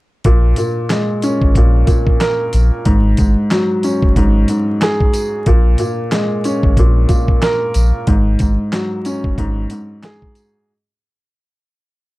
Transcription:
0.24 A#1 A#2, kick, closed hi-hat
0.56 A#2, closed hi-hat, tambourine
0.90 G#3, snare, clap, closed hi-hat
1.22 C#4, closed hi-hat, tambourine
1.42 G#1, kick
1.55 A#1 A#2, kick, closed hi-hat
1.87 A#2, kick, closed hi-hat, tambourine
2.07 kick
2.20 A#4, snare, clap, closed hi-hat
2.53 A#1, closed hi-hat, tambourine
2.85 G#1 G#2, kick, closed hi-hat
3.17 G#1 G#2, kick, closed hi-hat, tambourine
3.51 F#3, snare, clap, closed hi-hat
3.83 C#4, closed hi-hat, tambourine
4.02 F#1, kick
4.16 G#1 G#2, kick, closed hi-hat
4.48 G#2, closed hi-hat, tambourine
4.81 G#4, snare, clap, closed hi-hat
5.00 kick
5.14 closed hi-hat, tambourine
5.46 A#1 A#2, kick, closed hi-hat
5.78 A#2, closed hi-hat, tambourine
6.12 G#3, snare, clap, closed hi-hat
6.44 C#4, closed hi-hat, tambourine
6.63 G#1, kick
6.77 A#1 A#2, kick, closed hi-hat
7.09 A#2, kick, closed hi-hat, tambourine
7.28 kick
7.42 A#4, snare, clap, closed hi-hat
7.74 A#1, closed hi-hat, tambourine
8.07 G#1 G#2, kick, closed hi-hat
8.39 G#1 G#2, kick, closed hi-hat, tambourine
8.72 F#3, snare, clap, closed hi-hat
9.05 C#4, closed hi-hat, tambourine
9.24 F#1, kick
9.38 G#1 G#2, kick, closed hi-hat
9.70 G#2, closed hi-hat, tambourine
10.03 G#4, snare, clap, closed hi-hat
10.22 kick
10.35 closed hi-hat, tambourine

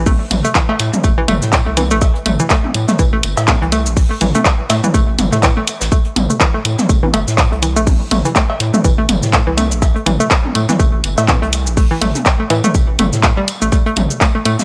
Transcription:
Already playing: A1
0.06 A3, kick, open hi-hat, high tom, cabasa
0.31 A1, closed hi-hat, mid tom, tambourine
0.44 A3, closed hi-hat, cabasa
0.55 E3, kick, snare, clap, tambourine, cabasa
0.69 A3, cowbell
0.79 A2, snare, closed hi-hat, tambourine
0.93 mid tom, high tom, cabasa
1.04 A1 A3, kick, tambourine, cabasa
1.18 A1 E3
1.28 G1 A3, closed hi-hat, mid tom, tambourine
1.42 A2, snare, cabasa
1.52 kick, snare, clap, tambourine, cabasa
1.67 C2 A3
1.77 E3, closed hi-hat, high tom, tambourine, cabasa
1.91 A1 A3, cabasa
2.01 kick, tambourine, cowbell, cabasa
2.15 closed hi-hat
2.26 A1 A3, closed hi-hat, mid tom, tambourine
2.40 E3, cabasa
2.50 A3, kick, snare, clap, tambourine, cabasa
2.64 high tom
2.74 A2, closed hi-hat, tambourine
2.89 A3, snare, mid tom, cabasa
2.99 A1 E3, kick, tambourine, cabasa
3.13 A1 A3
3.23 G1, closed hi-hat, tambourine
3.37 A2, snare, cowbell, cabasa
3.48 A3, kick, snare, clap, high tom, tambourine, cabasa
3.62 C2 E3, closed hi-hat
3.72 A3, closed hi-hat, tambourine, cabasa
3.86 A1, cabasa
3.97 kick, open hi-hat, cabasa
4.11 A3
4.21 A1 E3, closed hi-hat, mid tom, tambourine, cabasa
4.35 A3, closed hi-hat, high tom, cabasa
4.45 kick, snare, clap, tambourine, cabasa
4.69 A2 A3, snare, closed hi-hat, tambourine, cowbell, cabasa
4.84 E3, mid tom, cabasa
4.94 A1 A3, kick, tambourine, cabasa
5.08 A1
5.19 G1, closed hi-hat, mid tom, high tom, tambourine, cabasa
5.32 A2 A3, snare, cabasa
5.42 E3, kick, snare, clap, tambourine, cabasa
5.57 A3
5.67 closed hi-hat, tambourine, cabasa
5.81 A1, snare, tambourine, cabasa
5.92 A3, kick, tambourine, cabasa
6.05 closed hi-hat
6.16 A1, closed hi-hat, mid tom, high tom, tambourine
6.30 A3, cabasa
6.40 E3, kick, snare, clap, tambourine, cabasa
6.54 A3
6.65 A2, closed hi-hat, tambourine
6.78 snare, mid tom, cabasa
6.89 A1 A3, kick, tambourine, cabasa
7.03 A1 E3, high tom
7.13 G1 A3, closed hi-hat, tambourine, cowbell
7.28 A2, snare, cabasa
7.38 kick, snare, clap, tambourine, cabasa
7.52 C2 A3, closed hi-hat
7.62 E3, closed hi-hat, tambourine, cabasa
7.76 A1 A3, cabasa
7.87 kick, open hi-hat, high tom, cabasa
8.11 A1 A3, closed hi-hat, mid tom, tambourine
8.25 E3, closed hi-hat, cabasa
8.35 A3, kick, snare, clap, tambourine, cabasa
8.50 cowbell
8.60 A2, snare, closed hi-hat, tambourine
8.74 A3, mid tom, high tom, cabasa
8.84 A1 E3, kick, tambourine, cabasa
8.98 A1 A3
9.09 G1, closed hi-hat, mid tom, tambourine
9.23 A2, snare, cabasa
9.33 A3, kick, snare, clap, tambourine, cabasa
9.47 C2 E3
9.58 A3, closed hi-hat, high tom, tambourine, cabasa
9.72 A1, cabasa
9.82 kick, tambourine, cowbell, cabasa
9.96 A3, closed hi-hat
10.06 A1 E3, closed hi-hat, mid tom, tambourine
10.20 A3, cabasa
10.30 kick, snare, clap, tambourine, cabasa
10.45 high tom
10.55 A2 A3, closed hi-hat, tambourine
10.69 E3, snare, mid tom, cabasa
10.79 A1 A3, kick, tambourine, cabasa
10.94 A1
11.04 G1, closed hi-hat, tambourine
11.18 A2 A3, snare, cowbell, cabasa
11.28 E3, kick, snare, clap, high tom, tambourine, cabasa
11.42 C2 A3, closed hi-hat
11.53 closed hi-hat, tambourine, cabasa
11.67 A1, cabasa
11.77 A3, kick, open hi-hat, cabasa
11.91 E3
12.01 A1 A3, closed hi-hat, mid tom, tambourine
12.15 closed hi-hat, high tom, cabasa
12.26 kick, snare, clap, tambourine, cabasa
12.40 A3
12.50 A2 E3, snare, closed hi-hat, tambourine, cowbell
12.64 A3, mid tom, cabasa
12.75 A1, kick, tambourine, cabasa
12.89 A1
12.99 G1 A3, closed hi-hat, mid tom, high tom, tambourine
13.13 A2, snare, cabasa
13.23 A3, kick, snare, clap, tambourine, cabasa
13.37 G3
13.48 closed hi-hat, tambourine, cabasa
13.62 A1 A3, cabasa
13.72 A3, kick, tambourine, cabasa
13.86 A3, closed hi-hat
13.96 A1, closed hi-hat, mid tom, high tom, tambourine
14.11 cabasa
14.21 A3, kick, snare, clap, tambourine, cabasa
14.35 A3
14.45 A2 A3, closed hi-hat, tambourine
14.59 snare, mid tom, cabasa

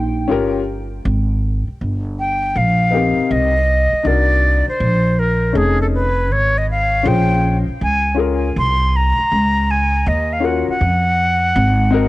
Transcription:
Already playing: A#1 D#4 G5
0.28 G1 C#4 F4 G4 A#4
1.05 G#1
1.68 muted upright bass stroke
1.81 G1
2.19 G5
2.56 A#1 F5
2.91 B3 D#4 G4
2.95 C4 A#4
3.18 muted upright bass stroke
3.31 C2 D#5
3.93 muted upright bass stroke
4.04 C2 D4 D#4 F#4 A#4 D5
4.68 C5, muted upright bass stroke
4.80 A#1
5.19 A#4
5.53 F1 C#4 D#4 G#4 A4
5.57 G#4
5.82 A4
5.95 B4
6.31 G#1 C#5
6.58 D#5
6.71 F5
7.03 A#1 C#4 F4 G#4
7.07 C5 G5
7.68 muted upright bass stroke
7.81 C#2 G#5
8.15 C#4 F4 G#4
8.19 A#4
8.56 C2 C6
8.96 A#5
9.18 muted upright bass stroke
9.32 C#2
9.71 G#5
10.06 D#2 D#5
10.33 F5
10.40 C#4 F4 F#4 A#4
10.45 F#5
10.68 F#5, muted upright bass stroke
10.81 F2
11.56 G#1
11.91 C4 D#4 F#4 A#4

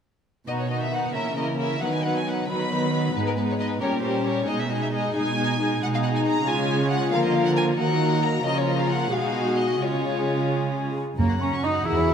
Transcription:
0.47 B2 D#3 B3 D#4 F#4 D#5
0.60 C#5
0.70 B3 D#4 F#4 D#5
0.82 E5
0.92 B3 D#4 F#4 F#5
1.14 C#3 E3 A#3 C#4 E4 A#4 E5
1.37 A#3 C#4 E4 A#4 D#5
1.58 A#3 C#4 E4 A#4 E5
1.81 D#3 F#3 B3 D#4 B4 F#5
1.94 G#5
2.03 F#3 B3 D#4 B4 F#5
2.15 G#5
2.26 F#3 B3 D#4 B4 F#5
2.48 D#3 F#3 B3 D#4 B4 B5
2.71 F#3 B3 D#4 B4
2.93 F#3 B3 D#4 B4
3.15 G#2 G#3 B3 D#4 B4
3.27 A#4
3.37 G#3 B3 D#4 B4
3.50 C#5
3.60 G#3 B3 D#4 B4 D#5
3.81 A#2 G3 C#4 G4 A#4 C#5
4.03 G3 C#4 G4 A#4 C5
4.25 G3 C#4 G4 A#4 C#5
4.48 B2 G#3 D#4 G#4 D#5
4.60 E5
4.70 G#3 D#4 G#4 D#5
4.82 E5
4.93 G#3 D#4 G#4 D#5
5.16 B2 G#3 D#4 G#4 G#5
5.38 G#3 D#4 G#4
5.60 G#3 D#4 G#4
5.81 B2 G#3 D#4 G#4 F#5
5.94 F5
6.03 F#5
6.16 G#5
6.26 A#5
6.47 C#3 G#3 C#4 F4 G#4 G#5
6.91 F#5
7.12 D3 F3 A#3 F4 A#4 F5
7.24 D#5
7.35 F5
7.46 F#5
7.57 G#5
7.78 D#3 F#3 A#3 D#4 F#4 A#4 F#5
8.22 A#5
8.44 C#3 F3 C#4 F4 A#4 D#5
8.56 C#5
8.68 D#5
8.80 F5
8.90 F#5
9.12 B2 G#3 D#4 F#4 G#4 F5
9.58 D#5
9.81 C#3 G#3 C#4 F4 G#4 C#5
11.18 F#2 A#3 F#4 C#5 F#5 A#5
11.30 F#5
11.41 C#4 A#5 C#6
11.54 C#6
11.64 D#4 A#5 D#6
11.76 F#5
11.85 E2 E4 G#4 A#4 E6
11.97 C#5
12.08 E5

